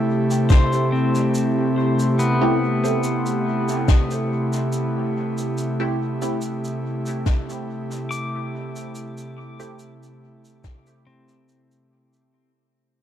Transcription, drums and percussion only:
0.31 shaker
0.49 kick, snare, shaker
0.73 shaker
1.15 shaker
1.34 shaker
1.99 shaker
2.19 shaker
2.85 shaker
3.03 shaker
3.26 shaker
3.68 shaker
3.88 kick, snare, shaker
4.11 shaker
4.53 shaker
4.73 shaker
5.38 shaker
5.58 shaker
6.22 shaker
6.41 shaker
6.64 shaker
7.06 shaker
7.26 kick, snare, shaker
7.50 shaker
7.91 shaker
8.11 shaker
8.76 shaker
8.95 shaker
9.18 shaker
9.60 shaker
9.79 shaker
10.03 shaker
10.45 shaker
10.64 kick, snare, shaker
10.87 shaker
11.28 shaker
11.49 shaker
11.71 shaker
12.13 shaker

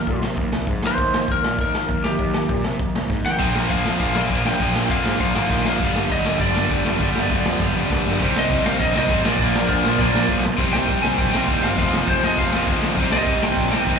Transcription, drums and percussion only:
0.07 kick, open hi-hat
0.23 snare
0.37 kick, open hi-hat
0.52 snare
0.66 kick, open hi-hat
0.82 snare
0.98 kick, open hi-hat
1.14 snare
1.27 kick, open hi-hat
1.44 snare
1.58 kick, open hi-hat
1.75 snare
1.89 kick, open hi-hat
2.04 snare
2.18 kick, open hi-hat
2.34 snare
2.49 kick, open hi-hat
2.64 snare
2.79 kick, open hi-hat
2.95 snare
3.10 kick, snare
3.26 snare
3.39 kick, crash
3.55 snare
3.70 kick, open hi-hat
3.85 snare
3.99 kick, open hi-hat
4.15 snare
4.29 kick, open hi-hat
4.45 snare
4.60 kick, open hi-hat
4.76 snare
4.89 kick, open hi-hat
5.05 snare
5.20 kick, open hi-hat
5.35 snare
5.50 kick, open hi-hat
5.65 snare
5.79 kick, open hi-hat
5.96 snare
6.09 kick, open hi-hat
6.25 snare
6.39 kick, open hi-hat
6.56 snare
6.70 kick, open hi-hat
6.86 snare
6.99 kick, open hi-hat
7.15 snare
7.29 kick, open hi-hat
7.45 snare
7.60 kick, snare
7.90 kick, snare
8.06 snare
8.20 kick, crash
8.36 snare
8.50 kick, crash
8.65 snare
8.80 kick, crash
8.96 snare
9.09 kick, crash
9.25 snare
9.39 kick, crash
9.55 snare
9.69 kick, crash
9.85 snare
9.99 kick, crash
10.14 snare
10.29 kick, crash
10.44 snare
10.58 kick, crash
10.74 snare
10.88 kick, crash
11.04 snare
11.18 kick, crash
11.34 snare
11.48 kick, crash
11.64 snare
11.78 kick, crash
11.93 snare
12.08 kick, crash
12.23 snare
12.38 kick, crash
12.52 snare
12.67 kick, crash
12.82 snare
12.96 kick, crash
13.12 snare
13.26 kick, crash
13.43 snare
13.57 kick, crash
13.73 snare
13.87 kick, crash

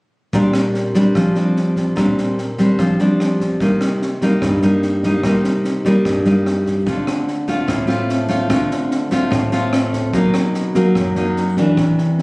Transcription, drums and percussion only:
0.33 kick, snare
0.54 cross-stick, snare
0.74 snare
0.95 kick, snare
1.15 kick, cross-stick, snare
1.35 snare
1.57 snare
1.76 kick, snare
1.97 kick, cross-stick, snare
2.18 snare
2.38 snare
2.58 kick, snare
2.79 kick, cross-stick, snare
2.99 snare
3.20 cross-stick, snare
3.40 kick, snare
3.60 kick, snare
3.81 cross-stick, snare
4.02 snare
4.22 kick, snare
4.42 kick, cross-stick, snare
4.62 snare
4.82 snare
5.03 kick, snare
5.24 kick, cross-stick, snare
5.44 snare
5.65 snare
5.85 kick, snare
6.05 kick, cross-stick, snare
6.26 snare
6.46 cross-stick, snare
6.66 kick, snare
6.87 kick, snare
7.07 cross-stick, snare
7.28 snare
7.48 kick, snare
7.68 kick, cross-stick, snare
7.89 snare
8.09 snare
8.29 kick, snare
8.50 kick, cross-stick, snare
8.71 snare
8.91 snare
9.11 kick, snare
9.32 kick, cross-stick, snare
9.52 snare
9.73 cross-stick, snare
9.93 kick, snare
10.14 kick, snare
10.34 cross-stick, snare
10.54 snare
10.75 kick, snare
10.95 kick, cross-stick, snare
11.15 snare
11.36 snare
11.57 kick, snare
11.77 kick, cross-stick, snare
11.98 snare
12.19 snare

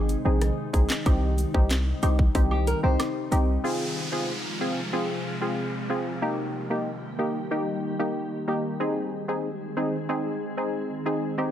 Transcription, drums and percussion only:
0.09 closed hi-hat, cabasa
0.42 cross-stick, closed hi-hat
0.74 kick, closed hi-hat, cabasa
0.90 snare, clap
1.06 kick, closed hi-hat, high woodblock
1.38 closed hi-hat, cabasa
1.54 kick
1.71 snare, clap, closed hi-hat
2.03 closed hi-hat, cabasa, high woodblock
2.19 kick
2.35 kick, closed hi-hat
2.51 high woodblock
2.67 closed hi-hat, cabasa
2.99 cross-stick, snare, closed hi-hat, high woodblock
3.32 closed hi-hat, cabasa

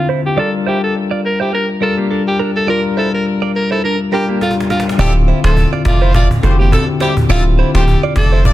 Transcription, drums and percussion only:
4.41 cajon slap
4.51 cajon slap
4.60 cajon slap
4.70 cajon slap
4.80 cajon slap
4.89 cajon slap
4.99 cajon bass
5.15 cajon slap
5.28 cajon slap
5.44 cajon slap
5.57 cajon bass
5.73 cajon slap
5.85 cajon bass, cajon slap
6.01 cajon slap
6.14 cajon bass
6.31 cajon bass
6.43 cajon slap
6.59 cajon slap
6.72 cajon bass, cajon slap
6.88 cajon slap
7.00 cajon slap
7.17 cajon bass
7.30 cajon bass
7.45 cajon slap
7.59 cajon slap
7.75 cajon slap
7.88 cajon bass
8.03 cajon slap
8.16 cajon bass, cajon slap
8.32 cajon slap
8.45 cajon bass

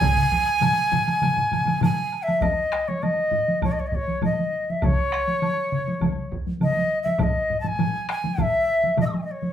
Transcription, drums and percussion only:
0.01 taiko, taiko low-mid, taiko mid, taiko high, high woodblock
0.17 taiko low-mid, taiko mid
0.32 taiko, taiko high, high woodblock
0.46 high woodblock
0.61 taiko low-mid, taiko mid, taiko high, high woodblock
0.92 taiko low-mid, taiko mid, taiko high, high woodblock
1.07 taiko high, high woodblock
1.22 taiko low-mid, taiko mid, taiko high, high woodblock
1.37 taiko low-mid, taiko mid
1.52 taiko low-mid, taiko mid, taiko high, high woodblock
1.65 taiko low-mid, taiko mid, taiko high, high woodblock
1.81 taiko low-mid, taiko mid, taiko high, high woodblock
2.12 high woodblock
2.27 taiko high, high woodblock
2.41 taiko, taiko low-mid, taiko high, high woodblock
2.72 taiko rim
2.88 taiko high
3.03 taiko high, high woodblock
3.32 taiko low-mid
3.48 taiko high
3.62 taiko, taiko low-mid, taiko high, high woodblock
3.92 taiko
4.08 taiko high
4.22 taiko low-mid, taiko high, high woodblock
4.39 taiko high
4.70 taiko high
4.82 taiko, taiko mid, taiko high, high woodblock
5.12 taiko rim
5.27 taiko high
5.42 taiko high, high woodblock
5.72 taiko mid
5.88 taiko high
6.01 taiko, taiko mid, taiko high, high woodblock
6.32 taiko
6.47 taiko high
6.61 taiko mid, taiko high, high woodblock
6.76 taiko high
7.06 taiko high
7.19 taiko, taiko low-mid, taiko high, high woodblock
7.50 taiko low-mid
7.64 taiko low-mid, taiko high
7.79 taiko low-mid, taiko high, high woodblock
8.09 taiko rim
8.24 taiko high
8.38 taiko, taiko low-mid, taiko high, high woodblock
8.84 taiko high
8.97 taiko low-mid, taiko high, high woodblock
9.14 taiko high
9.42 taiko high

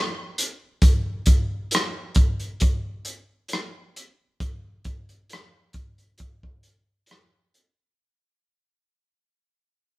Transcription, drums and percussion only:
0.38 closed hi-hat
0.82 kick, closed hi-hat
1.26 kick, closed hi-hat
1.71 cross-stick, closed hi-hat
2.15 kick, closed hi-hat
2.40 closed hi-hat
2.60 kick, closed hi-hat
3.05 closed hi-hat
3.48 closed hi-hat
3.53 cross-stick
3.96 closed hi-hat
4.40 kick, closed hi-hat
4.85 kick, closed hi-hat
5.09 closed hi-hat
5.30 cross-stick, closed hi-hat
5.73 kick, closed hi-hat
5.98 closed hi-hat
6.18 kick, closed hi-hat
6.43 kick
6.63 closed hi-hat
7.06 closed hi-hat
7.11 cross-stick
7.54 closed hi-hat

